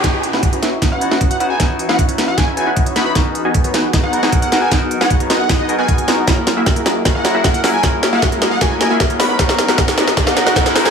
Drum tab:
HH |x-x-xxx-x-x-xxx-|x-x-xxx-x-x-xxx-|x-x-xxx-x-x-xxx-|x-x-xxx-x-x-xxx-|
SD |o--o--o-o--o----|o--o--o-o-----o-|o-----o-o--o--o-|o--o--o-o-----o-|
BD |o---o---o---o---|o---o---o---o---|o---o---o---o---|o---o---o---o---|

HH |x-x-xxx-x-x-xxo-|x-x-xxx-x-x-xxo-|x-x-xxx-x-x-xxo-|
SD |o-o-o-o-o-o-o-o-|o-o-o-o-o-o-o-o-|oooooooooooooooo|
BD |o---o---o---o---|o---o---o---o---|o---o---o---o---|